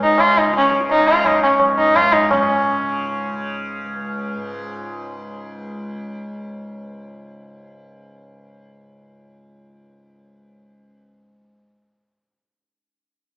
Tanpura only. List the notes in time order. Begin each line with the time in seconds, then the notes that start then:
Already playing: C#2 G#2 C#3
0.47 C#3
0.97 C#3
1.49 C#2
2.02 G#2
2.31 G#2
2.82 C#3
3.32 C#3
3.84 C#2
4.35 G#2